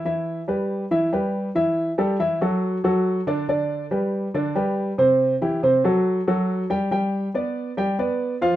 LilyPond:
\new Staff \with { instrumentName = "Upright piano" } { \time 4/4 \key g \major \tempo 4 = 140 <e e' e''>4 <g g' b'>4 <e e' e''>8 <g g' b'>4 <e e' e''>8~ | <e e' e''>8 <g g' a'>8 <e e' e''>8 <fis fis' a'>4 <fis fis' a'>4 <d d' d''>8 | <d d' d''>4 <g g' b'>4 <d d' d''>8 <g g' b'>4 <c c' c''>8~ | <c c' c''>8 <e e' g'>8 <c c' c''>8 <fis fis' a'>4 <fis fis' a'>4 <g g' g''>8 |
<g g' g''>4 <b b' d''>4 <g g' g''>8 <b b' d''>4 <f f' f''>8 | }